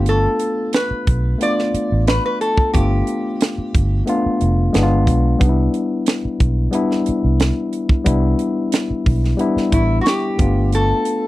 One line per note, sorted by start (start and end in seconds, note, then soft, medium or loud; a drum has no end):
0.00 0.26 G1 medium
0.00 0.80 A3 medium
0.00 0.84 B3 medium
0.00 0.81 D4 medium
0.00 0.81 F4 medium
0.06 0.74 A4 medium
0.06 closed hi-hat medium
0.39 closed hi-hat medium
0.73 1.43 B4 medium
0.73 snare medium
0.73 closed hi-hat medium
0.91 muted fingered electric bass stroke soft
1.07 1.34 B1 medium
1.07 kick medium
1.07 closed hi-hat medium
1.38 2.20 A3 medium
1.38 2.21 B3 medium
1.38 2.21 D4 medium
1.38 2.22 F4 medium
1.38 closed hi-hat medium
1.43 2.04 D5 medium
1.59 snare soft
1.74 muted fingered electric bass stroke soft
1.74 closed hi-hat medium
1.92 2.18 A1 medium
2.07 2.24 B4 medium
2.07 snare medium
2.07 closed hi-hat medium
2.26 2.41 B4 medium
2.41 2.73 A4 medium
2.41 closed hi-hat medium
2.57 kick medium
2.73 3.01 G1 medium
2.73 3.54 A3 medium
2.73 3.54 B3 medium
2.73 3.55 D4 medium
2.73 3.56 F4 medium
2.73 4.03 G4 medium
2.73 kick medium
2.73 closed hi-hat medium
3.07 closed hi-hat medium
3.41 snare loud
3.41 closed hi-hat medium
3.58 muted fingered electric bass stroke soft
3.75 4.01 G1 medium
3.75 kick medium
3.75 closed hi-hat medium
4.06 4.73 A3 medium
4.06 4.73 B3 medium
4.06 4.74 D4 medium
4.06 4.75 F4 medium
4.06 closed hi-hat medium
4.26 muted fingered electric bass stroke soft
4.41 4.68 F1 medium
4.41 closed hi-hat medium
4.73 5.07 G1 medium
4.73 5.27 G#3 medium
4.73 5.28 B3 medium
4.73 5.28 D4 medium
4.73 4.82 E4 medium
4.73 snare medium
4.73 closed hi-hat medium
4.83 5.32 F4 medium
5.07 5.34 B1 medium
5.07 kick medium
5.07 closed hi-hat medium
5.39 5.67 C2 medium
5.39 6.20 G3 medium
5.39 6.21 B3 medium
5.39 6.21 D4 medium
5.39 5.48 D#4 medium
5.39 kick medium
5.39 closed hi-hat medium
5.49 6.25 E4 medium
5.74 closed hi-hat medium
6.06 snare loud
6.06 closed hi-hat medium
6.25 muted fingered electric bass stroke soft
6.40 6.67 B1 medium
6.40 kick medium
6.40 closed hi-hat medium
6.71 7.53 G3 medium
6.71 7.53 B3 medium
6.71 7.54 D4 medium
6.71 7.54 E4 medium
6.71 closed hi-hat medium
6.91 snare soft
7.06 muted fingered electric bass stroke soft
7.06 closed hi-hat medium
7.24 7.50 C2 medium
7.40 snare medium
7.40 closed hi-hat medium
7.73 closed hi-hat medium
7.89 kick medium
8.04 8.33 C2 medium
8.04 8.86 G3 medium
8.04 8.86 B3 medium
8.04 8.87 D4 medium
8.04 8.87 E4 medium
8.04 kick medium
8.04 closed hi-hat medium
8.39 closed hi-hat medium
8.72 snare loud
8.72 closed hi-hat medium
8.90 muted fingered electric bass stroke soft
9.06 9.33 B1 medium
9.06 kick medium
9.06 open hi-hat soft
9.24 snare soft
9.37 10.19 G3 medium
9.37 10.19 B3 medium
9.37 10.20 D4 medium
9.37 10.20 E4 medium
9.37 closed hi-hat medium
9.56 muted fingered electric bass stroke soft
9.56 snare soft
9.72 9.99 A1 medium
9.72 9.98 E4 medium
9.72 kick medium
9.72 closed hi-hat medium
10.01 10.07 F#4 medium
10.06 10.70 G4 medium
10.06 snare loud
10.06 closed hi-hat medium
10.37 10.91 G1 medium
10.37 11.28 A3 medium
10.37 11.28 B3 medium
10.37 11.28 D4 medium
10.37 11.28 F4 medium
10.37 kick medium
10.37 closed hi-hat medium
10.72 11.28 A4 medium
10.72 closed hi-hat medium
11.05 closed hi-hat medium